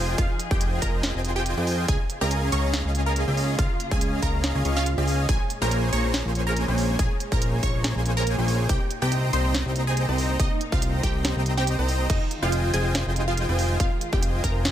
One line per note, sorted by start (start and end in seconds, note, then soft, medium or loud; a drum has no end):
0.00 0.16 F1 medium
0.00 1.85 F3 medium
0.00 1.85 D#4 medium
0.00 0.16 F4 medium
0.00 1.85 G#4 medium
0.00 0.16 C5 medium
0.00 0.16 D#5 medium
0.00 0.16 G5 medium
0.00 0.16 G#5 medium
0.00 impact medium
0.18 0.27 F1 loud
0.18 0.42 F4 medium
0.18 0.30 F4 medium
0.18 0.30 C5 medium
0.18 0.30 D#5 medium
0.18 0.42 F5 loud
0.18 0.30 G5 medium
0.18 0.30 G#5 medium
0.18 kick loud
0.18 closed hi-hat medium
0.39 closed hi-hat medium
0.51 0.80 F1 loud
0.51 0.80 F4 medium
0.51 0.74 G4 medium
0.51 0.80 C5 medium
0.51 0.80 D#5 medium
0.51 0.74 G5 loud
0.51 0.80 G5 medium
0.51 0.80 G#5 medium
0.51 kick loud
0.61 closed hi-hat medium
0.82 1.13 F1 medium
0.82 1.06 A#4 medium
0.82 1.06 A#5 loud
0.82 kick medium
0.82 closed hi-hat medium
1.03 snare loud
1.03 closed hi-hat medium
1.15 1.55 F1 loud
1.15 1.55 F4 medium
1.15 1.55 C5 medium
1.15 1.55 D#5 medium
1.15 1.55 G5 medium
1.15 1.55 G#5 medium
1.25 closed hi-hat medium
1.36 1.51 G4 medium
1.36 1.51 G5 medium
1.46 closed hi-hat medium
1.57 1.86 F2 loud
1.57 1.86 F4 medium
1.57 1.86 C5 medium
1.57 1.86 D#5 medium
1.57 1.86 G5 medium
1.57 1.86 G#5 medium
1.67 open hi-hat loud
1.88 1.98 C#2 loud
1.88 5.25 C#3 medium
1.88 5.25 A#3 medium
1.88 2.00 C#4 medium
1.88 5.25 F4 loud
1.88 2.12 G#4 medium
1.88 2.00 D#5 medium
1.88 2.00 F5 medium
1.88 2.12 G#5 loud
1.88 kick loud
1.88 closed hi-hat medium
2.10 closed hi-hat medium
2.21 2.50 C#2 loud
2.21 2.50 C#4 medium
2.21 2.50 G#4 medium
2.21 2.45 A#4 medium
2.21 2.50 D#5 medium
2.21 2.50 F5 medium
2.21 2.50 G#5 medium
2.21 2.45 A#5 loud
2.31 closed hi-hat medium
2.52 2.83 C#2 loud
2.52 2.82 C#4 medium
2.52 2.82 G#4 medium
2.52 2.76 C#5 medium
2.52 2.82 D#5 medium
2.52 2.82 F5 medium
2.52 2.82 A#5 loud
2.52 2.76 C#6 medium
2.52 closed hi-hat medium
2.73 snare loud
2.73 closed hi-hat medium
2.85 3.25 C#2 loud
2.85 3.25 C#4 medium
2.85 3.25 G#4 medium
2.85 3.25 D#5 medium
2.85 3.25 F5 medium
2.85 3.25 G#5 medium
2.95 closed hi-hat medium
3.06 3.22 A#4 medium
3.06 3.22 A#5 medium
3.16 closed hi-hat medium
3.28 3.57 C#2 loud
3.28 3.56 C#4 medium
3.28 3.56 G#4 medium
3.28 3.56 D#5 medium
3.28 3.56 F5 medium
3.28 3.56 G#5 loud
3.37 open hi-hat medium
3.59 3.68 C#2 medium
3.59 3.70 C#4 medium
3.59 3.82 F4 medium
3.59 3.70 D#5 medium
3.59 3.82 F5 loud
3.59 3.70 A#5 medium
3.59 kick loud
3.59 closed hi-hat medium
3.80 closed hi-hat medium
3.91 4.21 C#2 loud
3.91 4.20 C#4 medium
3.91 4.20 G#4 medium
3.91 4.15 G#4 medium
3.91 4.20 D#5 medium
3.91 4.20 F5 medium
3.91 4.15 G#5 loud
3.91 4.20 G#5 medium
3.91 kick loud
4.01 closed hi-hat medium
4.22 4.53 C#2 loud
4.22 4.53 C#4 medium
4.22 4.53 G#4 medium
4.22 4.46 A#4 medium
4.22 4.53 D#5 medium
4.22 4.53 F5 medium
4.22 4.46 A#5 loud
4.22 4.53 A#5 loud
4.22 kick medium
4.22 closed hi-hat medium
4.44 snare loud
4.44 closed hi-hat medium
4.55 4.63 C#2 medium
4.55 4.63 C#4 medium
4.55 4.63 G#4 medium
4.55 4.63 D#5 medium
4.55 4.63 F5 medium
4.55 4.63 G#5 medium
4.65 4.95 C#2 loud
4.65 4.82 C#4 loud
4.65 4.82 G#4 medium
4.65 4.82 D#5 medium
4.65 4.82 F5 medium
4.65 4.82 C#6 loud
4.65 closed hi-hat medium
4.76 4.92 F4 medium
4.76 4.92 F5 medium
4.76 snare soft
4.86 closed hi-hat medium
4.98 5.27 C#2 loud
4.98 5.27 C#4 medium
4.98 5.27 G#4 medium
4.98 5.27 D#5 medium
4.98 5.27 F5 medium
4.98 5.27 G#5 medium
5.08 open hi-hat medium
5.29 5.38 A#1 medium
5.29 12.06 A#2 medium
5.29 8.66 G#3 medium
5.29 5.40 A#3 medium
5.29 8.66 C#4 medium
5.29 5.52 G#4 medium
5.29 5.40 G#4 medium
5.29 5.40 C5 medium
5.29 5.52 G#5 loud
5.29 kick loud
5.29 closed hi-hat medium
5.50 closed hi-hat medium
5.61 5.91 A#1 loud
5.61 5.90 A#3 medium
5.61 5.90 G#4 medium
5.61 5.85 A#4 medium
5.61 5.90 C5 medium
5.61 5.90 C#5 medium
5.61 5.90 G#5 medium
5.61 5.85 A#5 loud
5.71 closed hi-hat medium
5.93 6.23 A#1 loud
5.93 6.23 A#3 medium
5.93 6.23 G#4 medium
5.93 6.23 C5 medium
5.93 6.16 C#5 medium
5.93 6.23 C#5 medium
5.93 6.23 A#5 loud
5.93 6.16 C#6 medium
5.93 closed hi-hat medium
6.14 snare loud
6.14 closed hi-hat medium
6.25 6.66 A#1 loud
6.25 6.65 A#3 medium
6.25 6.65 G#4 medium
6.25 6.65 C5 medium
6.25 6.65 C#5 medium
6.25 6.65 G#5 medium
6.35 closed hi-hat medium
6.47 6.62 A#4 medium
6.47 6.62 A#5 medium
6.57 closed hi-hat medium
6.68 6.97 A#1 loud
6.68 6.97 A#3 medium
6.68 6.97 G#4 medium
6.68 6.97 C5 medium
6.68 6.97 C#5 medium
6.68 6.97 G#5 medium
6.78 open hi-hat medium
6.99 7.08 A#1 medium
6.99 7.11 G#4 medium
6.99 7.23 G#4 medium
6.99 7.23 G#5 loud
6.99 kick loud
6.99 closed hi-hat medium
7.20 closed hi-hat medium
7.32 7.61 A#1 loud
7.32 7.61 A#3 medium
7.32 7.61 G#4 medium
7.32 7.55 A#4 medium
7.32 7.61 C5 medium
7.32 7.61 C#5 medium
7.32 7.61 G#5 medium
7.32 7.55 A#5 loud
7.32 kick loud
7.42 closed hi-hat medium
7.63 7.93 A#1 loud
7.63 7.93 A#3 medium
7.63 7.93 G#4 medium
7.63 7.87 C#5 medium
7.63 7.93 A#5 loud
7.63 7.87 C#6 loud
7.63 kick medium
7.63 closed hi-hat medium
7.84 snare loud
7.84 closed hi-hat medium
7.96 8.36 A#1 loud
7.96 8.36 A#3 medium
7.96 8.36 G#4 medium
7.96 8.35 C5 medium
7.96 8.36 C#5 medium
7.96 8.35 G#5 medium
8.06 closed hi-hat medium
8.17 8.32 A#4 medium
8.17 8.32 A#5 medium
8.27 closed hi-hat medium
8.38 8.67 A#1 loud
8.38 8.67 A#3 medium
8.38 8.67 G#4 medium
8.38 8.67 C5 medium
8.38 8.67 C#5 medium
8.38 8.67 G#5 loud
8.48 open hi-hat medium
8.69 8.79 C2 loud
8.69 12.06 A#3 medium
8.69 12.06 D#4 medium
8.69 8.93 G4 medium
8.69 8.93 G5 loud
8.69 kick loud
8.69 closed hi-hat medium
8.91 closed hi-hat medium
9.02 9.31 C2 loud
9.02 9.31 C4 medium
9.02 9.25 G4 medium
9.02 9.31 C5 medium
9.02 9.31 D#5 medium
9.02 9.25 G5 loud
9.02 9.31 G5 medium
9.02 9.31 A#5 medium
9.12 closed hi-hat medium
9.33 9.64 C2 loud
9.33 9.63 C4 medium
9.33 9.63 C5 medium
9.33 9.57 C5 medium
9.33 9.63 D#5 medium
9.33 9.63 G5 medium
9.33 9.63 A#5 loud
9.33 9.57 C6 medium
9.33 closed hi-hat medium
9.54 snare loud
9.54 closed hi-hat medium
9.66 10.06 C2 medium
9.66 10.06 C4 medium
9.66 10.06 C5 medium
9.66 10.06 D#5 medium
9.66 10.06 G5 medium
9.66 10.06 A#5 medium
9.76 closed hi-hat medium
9.87 10.02 G#4 medium
9.87 10.02 G#5 medium
9.97 closed hi-hat medium
10.08 10.38 C2 loud
10.08 10.37 C4 medium
10.08 10.37 C5 medium
10.08 10.37 D#5 medium
10.08 10.37 G5 medium
10.08 10.37 A#5 medium
10.18 open hi-hat loud
10.39 10.49 C2 loud
10.39 10.51 C4 medium
10.39 10.63 D#4 medium
10.39 10.51 C5 medium
10.39 10.63 D#5 loud
10.39 10.51 D#5 medium
10.39 10.51 G5 medium
10.39 10.51 A#5 medium
10.39 kick loud
10.39 closed hi-hat medium
10.61 closed hi-hat medium
10.72 11.01 C2 loud
10.72 11.01 C4 medium
10.72 10.96 F4 medium
10.72 11.01 C5 medium
10.72 11.01 D#5 medium
10.72 10.96 F5 loud
10.72 11.01 G5 medium
10.72 11.01 A#5 medium
10.72 kick loud
10.82 closed hi-hat medium
11.03 11.34 C2 medium
11.03 11.27 G4 medium
11.03 11.27 G5 medium
11.03 kick medium
11.03 closed hi-hat medium
11.25 snare loud
11.25 closed hi-hat medium
11.36 11.76 C2 medium
11.36 11.76 C4 medium
11.36 11.76 C5 medium
11.36 11.76 D#5 medium
11.36 11.76 G5 medium
11.36 11.76 A#5 medium
11.46 closed hi-hat medium
11.57 11.73 G4 medium
11.57 11.73 G5 medium
11.57 snare soft
11.67 closed hi-hat medium
11.79 12.08 C2 loud
11.79 12.07 C4 medium
11.79 12.07 C5 medium
11.79 12.07 D#5 medium
11.79 12.07 G5 medium
11.79 12.07 A#5 loud
11.88 open hi-hat loud
12.10 12.19 F1 loud
12.10 14.71 D#3 medium
12.10 14.71 G#3 medium
12.10 12.33 D#4 medium
12.10 14.71 F4 medium
12.10 12.21 F4 medium
12.10 12.21 C5 medium
12.10 12.33 D#5 loud
12.10 12.21 G5 medium
12.10 kick loud
12.10 closed hi-hat medium
12.10 crash medium
12.31 closed hi-hat medium
12.42 12.72 F1 loud
12.42 12.71 F4 medium
12.42 12.66 F4 medium
12.42 12.71 C5 medium
12.42 12.71 D#5 medium
12.42 12.66 F5 loud
12.42 12.71 G5 medium
12.42 12.71 G#5 medium
12.52 closed hi-hat medium
12.74 13.04 F1 medium
12.74 13.04 F4 medium
12.74 12.97 G#4 medium
12.74 13.04 C5 medium
12.74 13.04 D#5 medium
12.74 13.04 G5 medium
12.74 13.04 G#5 medium
12.74 12.97 G#5 loud
12.74 closed hi-hat medium
12.95 snare loud
12.95 closed hi-hat medium
13.06 13.47 F1 loud
13.06 13.46 F4 medium
13.06 13.46 C5 medium
13.06 13.46 D#5 medium
13.06 13.46 G5 medium
13.06 13.46 G#5 medium
13.16 closed hi-hat medium
13.28 13.43 F4 medium
13.28 13.43 F5 medium
13.37 closed hi-hat medium
13.49 13.78 F1 loud
13.49 13.78 F4 medium
13.49 13.78 C5 medium
13.49 13.78 D#5 medium
13.49 13.78 G5 medium
13.49 13.78 G#5 loud
13.59 open hi-hat loud
13.80 13.89 F1 loud
13.80 14.04 F4 medium
13.80 13.91 D#5 medium
13.80 14.04 F5 loud
13.80 kick loud
13.80 closed hi-hat medium
14.01 closed hi-hat medium
14.13 14.42 F1 loud
14.13 14.41 F4 medium
14.13 14.36 G4 medium
14.13 14.41 C5 medium
14.13 14.41 D#5 medium
14.13 14.41 G5 medium
14.13 14.36 G5 medium
14.13 14.41 G#5 medium
14.13 kick loud
14.23 closed hi-hat medium
14.44 14.71 F1 loud
14.44 14.71 F4 medium
14.44 14.67 A#4 medium
14.44 14.71 C5 medium
14.44 14.71 D#5 medium
14.44 14.71 G5 medium
14.44 14.71 G#5 loud
14.44 14.67 A#5 loud
14.44 kick medium
14.44 closed hi-hat medium
14.65 snare loud
14.65 closed hi-hat medium